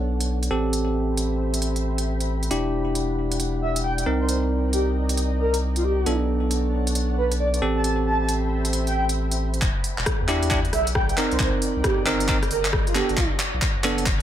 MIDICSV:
0, 0, Header, 1, 6, 480
1, 0, Start_track
1, 0, Key_signature, 1, "minor"
1, 0, Tempo, 444444
1, 788, Time_signature, 4, 2, 24, 8
1, 15358, End_track
2, 0, Start_track
2, 0, Title_t, "String machine"
2, 0, Program_c, 0, 50
2, 0, Note_on_c, 0, 73, 74
2, 0, Note_on_c, 0, 74, 69
2, 0, Note_on_c, 0, 78, 70
2, 0, Note_on_c, 0, 81, 82
2, 510, Note_off_c, 0, 74, 0
2, 531, Note_off_c, 0, 73, 0
2, 532, Note_off_c, 0, 78, 0
2, 532, Note_off_c, 0, 81, 0
2, 547, Note_on_c, 0, 72, 76
2, 547, Note_on_c, 0, 76, 65
2, 547, Note_on_c, 0, 79, 69
2, 547, Note_on_c, 0, 83, 88
2, 2686, Note_off_c, 0, 72, 0
2, 2686, Note_off_c, 0, 76, 0
2, 2709, Note_on_c, 0, 74, 74
2, 2710, Note_on_c, 0, 78, 69
2, 4349, Note_off_c, 0, 79, 0
2, 4350, Note_off_c, 0, 83, 0
2, 4372, Note_off_c, 0, 78, 0
2, 4390, Note_on_c, 0, 75, 70
2, 4391, Note_on_c, 0, 79, 73
2, 4391, Note_on_c, 0, 82, 87
2, 6528, Note_off_c, 0, 75, 0
2, 6528, Note_off_c, 0, 79, 0
2, 6528, Note_off_c, 0, 82, 0
2, 6547, Note_on_c, 0, 78, 70
2, 6548, Note_on_c, 0, 73, 75
2, 6548, Note_on_c, 0, 81, 87
2, 8186, Note_off_c, 0, 74, 0
2, 8211, Note_off_c, 0, 73, 0
2, 8211, Note_off_c, 0, 78, 0
2, 8211, Note_off_c, 0, 81, 0
2, 8229, Note_on_c, 0, 83, 88
2, 8230, Note_on_c, 0, 72, 73
2, 8230, Note_on_c, 0, 76, 69
2, 8230, Note_on_c, 0, 79, 70
2, 10367, Note_off_c, 0, 83, 0
2, 10368, Note_off_c, 0, 72, 0
2, 10368, Note_off_c, 0, 76, 0
2, 10368, Note_off_c, 0, 79, 0
2, 10388, Note_on_c, 0, 83, 79
2, 10389, Note_on_c, 0, 74, 72
2, 10389, Note_on_c, 0, 78, 67
2, 10389, Note_on_c, 0, 79, 73
2, 12052, Note_off_c, 0, 78, 0
2, 12052, Note_off_c, 0, 83, 0
2, 12068, Note_on_c, 0, 75, 70
2, 12069, Note_on_c, 0, 82, 87
2, 14190, Note_off_c, 0, 79, 0
2, 14207, Note_off_c, 0, 75, 0
2, 14207, Note_off_c, 0, 82, 0
2, 14226, Note_on_c, 0, 78, 70
2, 14227, Note_on_c, 0, 73, 76
2, 14227, Note_on_c, 0, 81, 83
2, 15358, Note_off_c, 0, 73, 0
2, 15358, Note_off_c, 0, 74, 0
2, 15358, Note_off_c, 0, 78, 0
2, 15358, Note_off_c, 0, 81, 0
2, 15358, End_track
3, 0, Start_track
3, 0, Title_t, "Soft synth lead"
3, 0, Program_c, 1, 80
3, 3908, Note_on_c, 1, 76, 89
3, 4073, Note_off_c, 1, 76, 0
3, 4148, Note_on_c, 1, 79, 84
3, 4246, Note_off_c, 1, 79, 0
3, 4301, Note_on_c, 1, 79, 70
3, 4357, Note_off_c, 1, 79, 0
3, 4539, Note_on_c, 1, 72, 82
3, 4596, Note_off_c, 1, 72, 0
3, 4626, Note_on_c, 1, 72, 74
3, 4725, Note_off_c, 1, 72, 0
3, 5108, Note_on_c, 1, 67, 89
3, 5273, Note_off_c, 1, 67, 0
3, 5829, Note_on_c, 1, 70, 88
3, 5993, Note_off_c, 1, 70, 0
3, 6222, Note_on_c, 1, 65, 80
3, 6292, Note_off_c, 1, 65, 0
3, 6312, Note_on_c, 1, 67, 94
3, 6611, Note_off_c, 1, 67, 0
3, 7748, Note_on_c, 1, 71, 89
3, 7913, Note_off_c, 1, 71, 0
3, 7990, Note_on_c, 1, 74, 84
3, 8087, Note_off_c, 1, 74, 0
3, 8141, Note_on_c, 1, 74, 67
3, 8197, Note_off_c, 1, 74, 0
3, 8382, Note_on_c, 1, 81, 87
3, 8438, Note_off_c, 1, 81, 0
3, 8467, Note_on_c, 1, 81, 75
3, 8565, Note_off_c, 1, 81, 0
3, 8708, Note_on_c, 1, 81, 88
3, 8830, Note_off_c, 1, 81, 0
3, 8862, Note_on_c, 1, 81, 87
3, 8971, Note_off_c, 1, 81, 0
3, 9581, Note_on_c, 1, 79, 87
3, 9637, Note_off_c, 1, 79, 0
3, 9669, Note_on_c, 1, 79, 70
3, 9766, Note_off_c, 1, 79, 0
3, 11588, Note_on_c, 1, 76, 91
3, 11753, Note_off_c, 1, 76, 0
3, 11827, Note_on_c, 1, 79, 85
3, 11925, Note_off_c, 1, 79, 0
3, 11981, Note_on_c, 1, 79, 77
3, 12037, Note_off_c, 1, 79, 0
3, 12222, Note_on_c, 1, 72, 91
3, 12277, Note_off_c, 1, 72, 0
3, 12310, Note_on_c, 1, 72, 75
3, 12407, Note_off_c, 1, 72, 0
3, 12790, Note_on_c, 1, 67, 90
3, 12954, Note_off_c, 1, 67, 0
3, 13509, Note_on_c, 1, 70, 94
3, 13673, Note_off_c, 1, 70, 0
3, 13900, Note_on_c, 1, 65, 86
3, 13971, Note_off_c, 1, 65, 0
3, 13989, Note_on_c, 1, 67, 95
3, 14290, Note_off_c, 1, 67, 0
3, 15358, End_track
4, 0, Start_track
4, 0, Title_t, "Tine electric piano"
4, 0, Program_c, 2, 4
4, 0, Note_on_c, 2, 59, 69
4, 0, Note_on_c, 2, 62, 64
4, 0, Note_on_c, 2, 69, 78
4, 527, Note_off_c, 2, 59, 0
4, 527, Note_off_c, 2, 62, 0
4, 527, Note_off_c, 2, 69, 0
4, 548, Note_on_c, 2, 60, 74
4, 548, Note_on_c, 2, 67, 65
4, 549, Note_on_c, 2, 69, 80
4, 2687, Note_off_c, 2, 60, 0
4, 2687, Note_off_c, 2, 67, 0
4, 2688, Note_off_c, 2, 69, 0
4, 2709, Note_on_c, 2, 62, 70
4, 2709, Note_on_c, 2, 67, 77
4, 2710, Note_on_c, 2, 64, 63
4, 4368, Note_off_c, 2, 62, 0
4, 4368, Note_off_c, 2, 64, 0
4, 4368, Note_off_c, 2, 67, 0
4, 4388, Note_on_c, 2, 60, 72
4, 4388, Note_on_c, 2, 70, 81
4, 4389, Note_on_c, 2, 63, 65
4, 6527, Note_off_c, 2, 60, 0
4, 6527, Note_off_c, 2, 70, 0
4, 6528, Note_off_c, 2, 63, 0
4, 6549, Note_on_c, 2, 59, 68
4, 6549, Note_on_c, 2, 62, 65
4, 6549, Note_on_c, 2, 69, 78
4, 8208, Note_off_c, 2, 59, 0
4, 8208, Note_off_c, 2, 62, 0
4, 8208, Note_off_c, 2, 69, 0
4, 8229, Note_on_c, 2, 60, 74
4, 8229, Note_on_c, 2, 67, 69
4, 8230, Note_on_c, 2, 69, 84
4, 10368, Note_off_c, 2, 60, 0
4, 10368, Note_off_c, 2, 67, 0
4, 10368, Note_off_c, 2, 69, 0
4, 11108, Note_on_c, 2, 62, 86
4, 11108, Note_on_c, 2, 64, 82
4, 11108, Note_on_c, 2, 67, 96
4, 11327, Note_off_c, 2, 62, 0
4, 11327, Note_off_c, 2, 64, 0
4, 11327, Note_off_c, 2, 67, 0
4, 11348, Note_on_c, 2, 62, 94
4, 11349, Note_on_c, 2, 64, 79
4, 11349, Note_on_c, 2, 67, 98
4, 11434, Note_off_c, 2, 62, 0
4, 11434, Note_off_c, 2, 64, 0
4, 11434, Note_off_c, 2, 67, 0
4, 12069, Note_on_c, 2, 63, 69
4, 12069, Note_on_c, 2, 70, 81
4, 12070, Note_on_c, 2, 60, 73
4, 13008, Note_off_c, 2, 60, 0
4, 13008, Note_off_c, 2, 63, 0
4, 13008, Note_off_c, 2, 70, 0
4, 13028, Note_on_c, 2, 60, 90
4, 13028, Note_on_c, 2, 63, 82
4, 13028, Note_on_c, 2, 70, 98
4, 13247, Note_off_c, 2, 63, 0
4, 13247, Note_off_c, 2, 70, 0
4, 13248, Note_off_c, 2, 60, 0
4, 13269, Note_on_c, 2, 60, 95
4, 13269, Note_on_c, 2, 63, 81
4, 13269, Note_on_c, 2, 70, 100
4, 13354, Note_off_c, 2, 60, 0
4, 13354, Note_off_c, 2, 63, 0
4, 13355, Note_off_c, 2, 70, 0
4, 13989, Note_on_c, 2, 59, 70
4, 13989, Note_on_c, 2, 62, 65
4, 13990, Note_on_c, 2, 69, 83
4, 14229, Note_off_c, 2, 59, 0
4, 14229, Note_off_c, 2, 62, 0
4, 14229, Note_off_c, 2, 69, 0
4, 14948, Note_on_c, 2, 59, 89
4, 14948, Note_on_c, 2, 62, 82
4, 14948, Note_on_c, 2, 69, 94
4, 15167, Note_off_c, 2, 59, 0
4, 15167, Note_off_c, 2, 62, 0
4, 15167, Note_off_c, 2, 69, 0
4, 15358, End_track
5, 0, Start_track
5, 0, Title_t, "Sub bass"
5, 0, Program_c, 3, 38
5, 0, Note_on_c, 3, 35, 90
5, 531, Note_off_c, 3, 35, 0
5, 547, Note_on_c, 3, 33, 84
5, 2690, Note_off_c, 3, 33, 0
5, 2708, Note_on_c, 3, 28, 88
5, 4371, Note_off_c, 3, 28, 0
5, 4388, Note_on_c, 3, 36, 86
5, 6531, Note_off_c, 3, 36, 0
5, 6551, Note_on_c, 3, 35, 89
5, 8212, Note_off_c, 3, 35, 0
5, 8230, Note_on_c, 3, 33, 86
5, 10372, Note_off_c, 3, 33, 0
5, 10388, Note_on_c, 3, 28, 96
5, 10496, Note_off_c, 3, 28, 0
5, 10781, Note_on_c, 3, 28, 100
5, 10843, Note_off_c, 3, 28, 0
5, 11021, Note_on_c, 3, 40, 101
5, 11548, Note_off_c, 3, 40, 0
5, 11589, Note_on_c, 3, 35, 90
5, 12028, Note_off_c, 3, 35, 0
5, 12221, Note_on_c, 3, 36, 96
5, 12283, Note_off_c, 3, 36, 0
5, 12308, Note_on_c, 3, 36, 98
5, 12416, Note_off_c, 3, 36, 0
5, 12700, Note_on_c, 3, 36, 91
5, 12763, Note_off_c, 3, 36, 0
5, 12941, Note_on_c, 3, 31, 96
5, 13468, Note_off_c, 3, 31, 0
5, 13510, Note_on_c, 3, 31, 92
5, 14070, Note_off_c, 3, 31, 0
5, 14141, Note_on_c, 3, 31, 98
5, 14203, Note_off_c, 3, 31, 0
5, 14228, Note_on_c, 3, 35, 103
5, 14336, Note_off_c, 3, 35, 0
5, 14620, Note_on_c, 3, 35, 93
5, 14683, Note_off_c, 3, 35, 0
5, 14860, Note_on_c, 3, 30, 100
5, 15358, Note_off_c, 3, 30, 0
5, 15358, End_track
6, 0, Start_track
6, 0, Title_t, "Drums"
6, 221, Note_on_c, 9, 42, 57
6, 329, Note_off_c, 9, 42, 0
6, 461, Note_on_c, 9, 42, 44
6, 569, Note_off_c, 9, 42, 0
6, 788, Note_on_c, 9, 42, 57
6, 896, Note_off_c, 9, 42, 0
6, 1268, Note_on_c, 9, 42, 59
6, 1376, Note_off_c, 9, 42, 0
6, 1660, Note_on_c, 9, 42, 56
6, 1748, Note_off_c, 9, 42, 0
6, 1748, Note_on_c, 9, 42, 58
6, 1856, Note_off_c, 9, 42, 0
6, 1901, Note_on_c, 9, 42, 33
6, 2009, Note_off_c, 9, 42, 0
6, 2141, Note_on_c, 9, 42, 58
6, 2249, Note_off_c, 9, 42, 0
6, 2381, Note_on_c, 9, 42, 43
6, 2489, Note_off_c, 9, 42, 0
6, 2621, Note_on_c, 9, 42, 31
6, 2709, Note_off_c, 9, 42, 0
6, 2709, Note_on_c, 9, 42, 59
6, 2817, Note_off_c, 9, 42, 0
6, 3189, Note_on_c, 9, 42, 61
6, 3297, Note_off_c, 9, 42, 0
6, 3581, Note_on_c, 9, 42, 61
6, 3668, Note_off_c, 9, 42, 0
6, 3668, Note_on_c, 9, 42, 63
6, 3776, Note_off_c, 9, 42, 0
6, 4061, Note_on_c, 9, 42, 61
6, 4169, Note_off_c, 9, 42, 0
6, 4301, Note_on_c, 9, 42, 47
6, 4409, Note_off_c, 9, 42, 0
6, 4629, Note_on_c, 9, 42, 64
6, 4737, Note_off_c, 9, 42, 0
6, 5108, Note_on_c, 9, 42, 64
6, 5216, Note_off_c, 9, 42, 0
6, 5501, Note_on_c, 9, 42, 63
6, 5588, Note_off_c, 9, 42, 0
6, 5588, Note_on_c, 9, 42, 60
6, 5696, Note_off_c, 9, 42, 0
6, 5981, Note_on_c, 9, 42, 63
6, 6089, Note_off_c, 9, 42, 0
6, 6221, Note_on_c, 9, 42, 47
6, 6329, Note_off_c, 9, 42, 0
6, 6548, Note_on_c, 9, 42, 63
6, 6656, Note_off_c, 9, 42, 0
6, 7028, Note_on_c, 9, 42, 63
6, 7136, Note_off_c, 9, 42, 0
6, 7420, Note_on_c, 9, 42, 60
6, 7508, Note_off_c, 9, 42, 0
6, 7508, Note_on_c, 9, 42, 63
6, 7616, Note_off_c, 9, 42, 0
6, 7901, Note_on_c, 9, 42, 62
6, 8009, Note_off_c, 9, 42, 0
6, 8141, Note_on_c, 9, 42, 50
6, 8249, Note_off_c, 9, 42, 0
6, 8469, Note_on_c, 9, 42, 63
6, 8577, Note_off_c, 9, 42, 0
6, 8949, Note_on_c, 9, 42, 65
6, 9057, Note_off_c, 9, 42, 0
6, 9340, Note_on_c, 9, 42, 65
6, 9429, Note_off_c, 9, 42, 0
6, 9429, Note_on_c, 9, 42, 68
6, 9537, Note_off_c, 9, 42, 0
6, 9580, Note_on_c, 9, 42, 38
6, 9688, Note_off_c, 9, 42, 0
6, 9820, Note_on_c, 9, 42, 63
6, 9928, Note_off_c, 9, 42, 0
6, 10060, Note_on_c, 9, 42, 51
6, 10168, Note_off_c, 9, 42, 0
6, 10300, Note_on_c, 9, 42, 33
6, 10388, Note_off_c, 9, 42, 0
6, 10388, Note_on_c, 9, 39, 45
6, 10388, Note_on_c, 9, 42, 61
6, 10389, Note_on_c, 9, 36, 114
6, 10496, Note_off_c, 9, 39, 0
6, 10496, Note_off_c, 9, 42, 0
6, 10497, Note_off_c, 9, 36, 0
6, 10627, Note_on_c, 9, 46, 105
6, 10735, Note_off_c, 9, 46, 0
6, 10780, Note_on_c, 9, 39, 40
6, 10868, Note_on_c, 9, 37, 111
6, 10868, Note_on_c, 9, 42, 61
6, 10869, Note_on_c, 9, 36, 98
6, 10888, Note_off_c, 9, 39, 0
6, 10976, Note_off_c, 9, 37, 0
6, 10976, Note_off_c, 9, 42, 0
6, 10977, Note_off_c, 9, 36, 0
6, 11107, Note_on_c, 9, 39, 47
6, 11107, Note_on_c, 9, 46, 90
6, 11215, Note_off_c, 9, 39, 0
6, 11215, Note_off_c, 9, 46, 0
6, 11260, Note_on_c, 9, 42, 63
6, 11347, Note_off_c, 9, 42, 0
6, 11347, Note_on_c, 9, 39, 52
6, 11347, Note_on_c, 9, 42, 62
6, 11349, Note_on_c, 9, 36, 114
6, 11455, Note_off_c, 9, 39, 0
6, 11455, Note_off_c, 9, 42, 0
6, 11457, Note_off_c, 9, 36, 0
6, 11500, Note_on_c, 9, 42, 35
6, 11588, Note_on_c, 9, 37, 68
6, 11588, Note_on_c, 9, 46, 99
6, 11608, Note_off_c, 9, 42, 0
6, 11696, Note_off_c, 9, 37, 0
6, 11696, Note_off_c, 9, 46, 0
6, 11740, Note_on_c, 9, 42, 63
6, 11828, Note_on_c, 9, 36, 110
6, 11828, Note_on_c, 9, 37, 108
6, 11848, Note_off_c, 9, 42, 0
6, 11936, Note_off_c, 9, 36, 0
6, 11936, Note_off_c, 9, 37, 0
6, 11980, Note_on_c, 9, 42, 48
6, 12069, Note_on_c, 9, 39, 55
6, 12069, Note_on_c, 9, 46, 93
6, 12088, Note_off_c, 9, 42, 0
6, 12177, Note_off_c, 9, 39, 0
6, 12177, Note_off_c, 9, 46, 0
6, 12220, Note_on_c, 9, 42, 35
6, 12308, Note_off_c, 9, 42, 0
6, 12308, Note_on_c, 9, 36, 120
6, 12308, Note_on_c, 9, 39, 57
6, 12308, Note_on_c, 9, 42, 59
6, 12416, Note_off_c, 9, 36, 0
6, 12416, Note_off_c, 9, 39, 0
6, 12416, Note_off_c, 9, 42, 0
6, 12548, Note_on_c, 9, 46, 107
6, 12656, Note_off_c, 9, 46, 0
6, 12788, Note_on_c, 9, 36, 108
6, 12788, Note_on_c, 9, 37, 120
6, 12788, Note_on_c, 9, 42, 64
6, 12896, Note_off_c, 9, 36, 0
6, 12896, Note_off_c, 9, 37, 0
6, 12896, Note_off_c, 9, 42, 0
6, 13028, Note_on_c, 9, 39, 61
6, 13028, Note_on_c, 9, 46, 89
6, 13136, Note_off_c, 9, 39, 0
6, 13136, Note_off_c, 9, 46, 0
6, 13180, Note_on_c, 9, 42, 64
6, 13267, Note_off_c, 9, 42, 0
6, 13267, Note_on_c, 9, 39, 64
6, 13267, Note_on_c, 9, 42, 64
6, 13268, Note_on_c, 9, 36, 118
6, 13375, Note_off_c, 9, 39, 0
6, 13375, Note_off_c, 9, 42, 0
6, 13376, Note_off_c, 9, 36, 0
6, 13420, Note_on_c, 9, 37, 72
6, 13420, Note_on_c, 9, 42, 35
6, 13508, Note_on_c, 9, 46, 105
6, 13528, Note_off_c, 9, 37, 0
6, 13528, Note_off_c, 9, 42, 0
6, 13616, Note_off_c, 9, 46, 0
6, 13661, Note_on_c, 9, 39, 59
6, 13661, Note_on_c, 9, 42, 60
6, 13748, Note_on_c, 9, 36, 117
6, 13748, Note_on_c, 9, 37, 119
6, 13769, Note_off_c, 9, 39, 0
6, 13769, Note_off_c, 9, 42, 0
6, 13856, Note_off_c, 9, 36, 0
6, 13856, Note_off_c, 9, 37, 0
6, 13901, Note_on_c, 9, 42, 46
6, 13989, Note_on_c, 9, 39, 69
6, 13989, Note_on_c, 9, 46, 92
6, 14009, Note_off_c, 9, 42, 0
6, 14097, Note_off_c, 9, 39, 0
6, 14097, Note_off_c, 9, 46, 0
6, 14140, Note_on_c, 9, 42, 36
6, 14228, Note_off_c, 9, 42, 0
6, 14228, Note_on_c, 9, 36, 118
6, 14228, Note_on_c, 9, 39, 68
6, 14228, Note_on_c, 9, 42, 60
6, 14336, Note_off_c, 9, 36, 0
6, 14336, Note_off_c, 9, 39, 0
6, 14336, Note_off_c, 9, 42, 0
6, 14468, Note_on_c, 9, 39, 77
6, 14468, Note_on_c, 9, 46, 107
6, 14576, Note_off_c, 9, 39, 0
6, 14576, Note_off_c, 9, 46, 0
6, 14708, Note_on_c, 9, 36, 115
6, 14709, Note_on_c, 9, 39, 82
6, 14709, Note_on_c, 9, 42, 64
6, 14816, Note_off_c, 9, 36, 0
6, 14817, Note_off_c, 9, 39, 0
6, 14817, Note_off_c, 9, 42, 0
6, 14948, Note_on_c, 9, 39, 76
6, 14948, Note_on_c, 9, 46, 88
6, 15056, Note_off_c, 9, 39, 0
6, 15056, Note_off_c, 9, 46, 0
6, 15100, Note_on_c, 9, 42, 64
6, 15187, Note_off_c, 9, 42, 0
6, 15187, Note_on_c, 9, 39, 83
6, 15187, Note_on_c, 9, 42, 62
6, 15188, Note_on_c, 9, 36, 123
6, 15295, Note_off_c, 9, 39, 0
6, 15295, Note_off_c, 9, 42, 0
6, 15296, Note_off_c, 9, 36, 0
6, 15358, End_track
0, 0, End_of_file